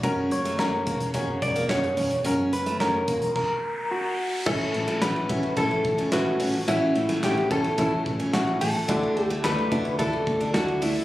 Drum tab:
CC |----------------|--------x-------|x---------------|----------------|
RD |----------------|----------------|-xxxxxxxxxxxx-xx|x-xxxxxxx-xxxxxx|
HH |x-xx--xxx-xx-xox|x-xx--xx--------|--------------o-|p-------------o-|
CP |----x-------x---|----x-----------|----x-------x---|----x-------x---|
SD |----o-------o---|----o-----------|----o-------o---|---oo-------o---|
BD |o-----o-o-o-----|------o-o-------|o-----o-o-o-----|------o-o-o-----|

CC |----------------|
RD |xxxxxxxxxxxxxxxx|
HH |p-------------o-|
CP |----x-------x---|
SD |----o-------o---|
BD |o-----o-o-o-----|